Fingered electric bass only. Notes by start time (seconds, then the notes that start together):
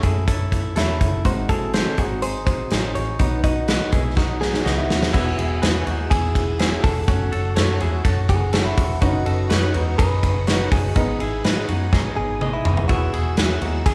0.03 F#2
0.76 E2
1.01 F#1
1.25 G#1
1.99 G#1
2.71 A1
2.96 A1
3.20 B1
3.93 B1
4.66 C#2
4.90 D#2
5.14 E1
5.38 E1
5.62 E2
5.87 D#2
6.11 E2
6.36 E1
6.84 E1
7.08 F#1
7.33 F#1
7.57 F#2
7.82 E2
8.05 F#2
8.29 F#1
8.78 E1
9.02 F#1
9.27 F#1
9.51 F#2
9.75 E2
9.99 F#2
10.23 F#1
10.72 F#1
10.96 G#1
11.20 G#1
11.45 G#2
11.69 F#2
11.93 G#2
12.17 G#1
12.65 F#1
12.90 E1
13.14 E1
13.38 E2
13.61 D#2
13.86 E2